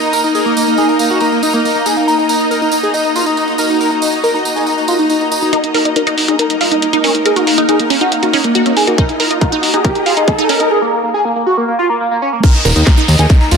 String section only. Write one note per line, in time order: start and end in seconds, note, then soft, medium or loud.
0.00 10.71 A#3 medium
0.00 10.71 D#4 medium
0.00 10.71 D#5 medium
0.00 10.71 A#5 medium
12.44 13.57 A#3 medium
12.70 13.57 D#4 medium
12.70 13.57 D#5 medium
12.96 13.57 A#5 medium